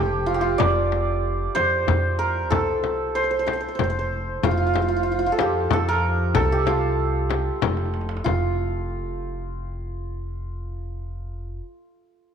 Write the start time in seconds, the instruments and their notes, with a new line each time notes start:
Already playing: upright bass F1, santur G4 A4 C5
0.26 santur F4
0.34 santur G4
0.41 santur F4
0.58 santur D5, frame drum, tombak dum
0.62 upright bass F1
0.92 frame drum
1.55 upright bass F2, santur C5, tombak tek, frame drum
1.72 tombak ka
1.87 upright bass F2, tombak dum, frame drum
2.19 santur A#4
2.50 upright bass C2, santur A4, tombak dum, frame drum
2.84 tombak tek, frame drum
3.15 santur C5
3.24 santur C5
3.31 santur C5
3.39 santur C5
3.47 santur C5, tombak tek, frame drum
3.53 santur C5
3.60 santur C5, tombak ka
3.68 santur C5
3.75 santur C5
3.79 upright bass F1, frame drum, tombak dum
3.84 santur C5
3.90 santur C5
3.99 santur C5
4.43 upright bass F1, santur F4, tombak dum, frame drum
4.51 santur F4
4.57 santur F4
4.67 santur F4
4.74 santur F4, tombak tek, frame drum
4.82 santur F4
4.88 santur F4
4.97 santur F4
5.03 santur F4
5.12 santur F4
5.19 santur F4
5.26 santur F4
5.32 santur A4
5.39 upright bass F2, santur G4, tombak tek, frame drum
5.55 tombak ka
5.70 upright bass F2, santur A4, tombak dum, frame drum
5.89 santur A#4
6.34 upright bass C2, santur A4, tombak dum, frame drum
6.52 santur G4
6.66 santur F4, tombak tek, frame drum
7.30 tombak tek, frame drum
7.45 tombak ka
7.62 upright bass F1, tombak tek, frame drum
7.69 tombak ka
7.77 tombak tek
7.85 tombak ka
7.94 tombak tek
8.01 tombak ka
8.09 tombak tek
8.17 tombak ka
8.24 upright bass F1, santur F4, tombak dum, frame drum